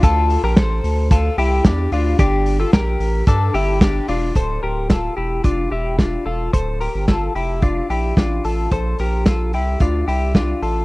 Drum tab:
RD |x-x-x-x-|x-x-x-x-|--------|--------|
HH |popopopo|popopopo|x-x-x-x-|xoxoxoxo|
SD |--o---o-|--o---o-|--o---o-|--o---o-|
BD |o-o-o-o-|o-o-o-o-|o-o-o-o-|o-o-o-o-|

RD |--------|
HH |xoxoxoxo|
SD |--o---o-|
BD |o-o-o-o-|